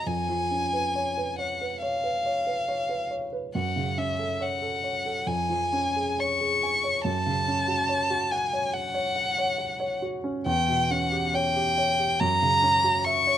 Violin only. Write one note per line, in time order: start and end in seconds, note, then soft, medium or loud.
0.07 1.38 G#5 medium
1.39 1.82 F#5 soft
1.83 3.10 F5 medium
3.56 4.00 F#5 medium
3.98 4.43 E5 medium
4.42 5.29 F#5 medium
5.27 6.21 G#5 medium
6.20 7.05 C#6 medium
7.05 8.33 A5 medium
8.31 8.75 G#5 medium
8.74 10.03 F#5 medium
10.47 10.92 G5 medium
10.91 11.36 F#5 medium
11.35 12.21 G5 medium
12.20 13.06 A#5 medium
13.05 13.38 C#6 medium